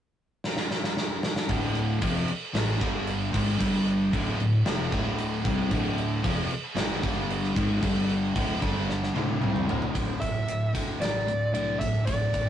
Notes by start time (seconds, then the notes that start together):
0.44 snare
0.57 snare
0.71 snare
0.84 snare
0.97 snare
1.23 snare
1.36 snare
1.48 D1 D2 A2 D3, kick, crash
1.75 crash
2.01 F1 F2 C3 F3, kick, crash
2.28 muted overdriven electric guitar stroke, muted fingered electric bass stroke, muted distorted electric guitar stroke, crash
2.53 A1 A2 E3 A3, snare, crash
2.79 G1 G2 D3 G3, kick, crash
3.07 crash
3.32 G#1 G#2 D#3 G#3, kick, crash
3.57 G1 G2 D3 G3, kick, crash
3.87 crash
4.12 D1 D2 A2 D3, kick, crash
4.38 D1 D2 A2, crash
4.65 F1 F2 C3 F3, snare, crash
4.92 D1 D2 A2 D3, kick, crash
5.18 crash
5.44 C2 C3 G3 C4, kick, crash
5.70 D1 D2 A2 D3, kick, crash
5.98 crash
6.23 F1 F2 C3 F3, kick, crash
6.49 muted overdriven electric guitar stroke, muted distorted electric guitar stroke, muted fingered electric bass stroke, crash
6.75 A1 A2 E3 A3, snare, crash
7.01 G1 G2 D3 G3, kick, crash
7.30 crash
7.44 snare
7.54 G#1 G#2 D#3 G#3, kick, crash
7.81 G1 G2 D3 G3, kick, crash
8.09 crash
8.34 D1 D2 A2 D3, kick, crash
8.60 G1 G2 D3 G3, kick, crash
8.89 snare
9.03 snare
9.14 D1 D2 A2 D3, high tom
9.29 high tom
9.40 C2 C3 G3 C4, mid tom
9.56 mid tom
9.67 D1 D2 A2 D3, floor tom
9.82 floor tom
9.92 D1 D2 A2 D3, kick, ride
10.20 D1 D2 A2 E5, kick, ride
10.46 D1 D2 A2, ride
10.73 D2 A2 D3, kick, ride
11.00 A1 D2 A2 D5, snare, ride
11.26 D1 D2 A2, ride
11.53 C2 D2 A2 D3 D5, ride
11.80 D2 A2 E5, kick, ride
12.06 D1 D2 A2 D5, kick, ride
12.33 D1 D2 A2, kick, ride